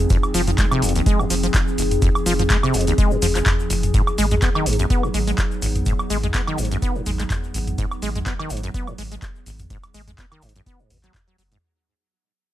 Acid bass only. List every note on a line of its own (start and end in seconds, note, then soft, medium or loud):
0.10 0.18 F2 loud
0.34 0.42 F3 loud
0.47 0.51 F3 medium
0.58 0.66 G#3 medium
0.72 0.84 C3 loud
0.82 0.93 F2 medium
0.96 1.01 D#2 loud
1.06 1.21 G#3 loud
1.19 1.25 F2 medium
1.30 1.35 F3 medium
1.43 1.47 F3 medium
1.78 1.83 F1 medium
2.02 2.09 F2 loud
2.26 2.33 F3 loud
2.39 2.43 F3 medium
2.50 2.58 G#3 medium
2.63 2.76 C3 loud
2.74 2.85 F2 medium
2.87 2.93 D#2 loud
2.98 3.13 G#3 loud
3.11 3.17 F2 medium
3.22 3.27 F3 medium
3.35 3.39 F3 medium
3.70 3.75 F1 medium
3.94 4.02 G#2 loud
4.18 4.26 G#3 loud
4.32 4.35 G#3 medium
4.42 4.50 B3 medium
4.56 4.68 D#3 loud
4.66 4.77 G#2 medium
4.79 4.85 F#2 loud
4.90 5.05 B3 loud
5.04 5.09 G#2 medium
5.14 5.19 G#3 medium
5.28 5.31 G#3 medium
5.62 5.67 G#1 medium
5.86 5.94 G#2 loud
6.10 6.18 G#3 loud
6.24 6.27 G#3 medium
6.34 6.42 B3 medium
6.48 6.60 D#3 loud
6.58 6.69 G#2 medium
6.72 6.77 F#2 loud
6.82 6.97 B3 loud
6.96 7.01 G#2 medium
7.06 7.11 G#3 medium
7.20 7.23 G#3 medium
7.54 7.59 G#1 medium
7.78 7.86 G#2 loud
8.02 8.10 G#3 loud
8.16 8.19 G#3 medium
8.26 8.34 B3 medium
8.40 8.52 D#3 loud
8.50 8.61 G#2 medium
8.64 8.69 F#2 loud
8.74 8.89 B3 loud
8.88 8.93 G#2 medium
8.98 9.03 G#3 medium
9.12 9.15 G#3 medium
9.46 9.51 G#1 medium
9.70 9.78 G#2 loud
9.94 10.02 G#3 loud
10.08 10.11 G#3 medium
10.18 10.26 B3 medium
10.32 10.44 D#3 loud
10.43 10.53 G#2 medium
10.56 10.62 F#2 loud
10.66 10.81 B3 loud
10.80 10.92 G#2 medium
10.90 10.98 B2 medium
11.04 11.12 F#3 loud
11.28 11.37 F#3 medium
11.39 11.43 F#3 medium
11.52 11.58 G#2 loud